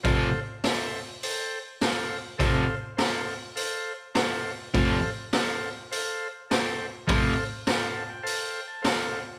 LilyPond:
<<
  \new Staff \with { instrumentName = "Transistor combo organ" } { \time 4/4 \key f \major \tempo 4 = 102 << { r1 | r1 | r1 | r4. a''16 g''16 a''16 g''8 a''16 f''4 | } \\ { <a' c'' f''>8 r8 <a' c'' e''>8 r8 <a' c'' g''>8 r8 <a' c'' f''>8 r8 | <a' c'' f''>8 r8 <a' c'' f''>8 r8 <a' c'' f''>8 r8 <a' c'' f''>8 r8 | <a' c'' f''>8 r8 <a' c'' f''>8 r8 <a' c'' f''>8 r8 <a' c'' g''>8 r8 | <a' c'' f''>8 r8 <a' c'' f''>8 r8 <a' c'' f''>8 r8 <a' c''>8 r8 | } >> }
  \new Staff \with { instrumentName = "Overdriven electric guitar" } { \clef bass \time 4/4 \key f \major <f, c f>8 r2. r8 | <f, c f>8 r2. r8 | <f, c f>8 r2. r8 | <f, c f>8 r2. r8 | }
  \new DrumStaff \with { instrumentName = "Drums" } \drummode { \time 4/4 <hho bd>4 <hho sn>4 hho4 <hho sn>4 | <hho bd>4 <hho sn>4 hho4 <hho sn>4 | <hho bd>4 <hho sn>4 hho4 <hho sn>4 | <hho bd>4 <hho sn>4 hho4 <hho sn>4 | }
>>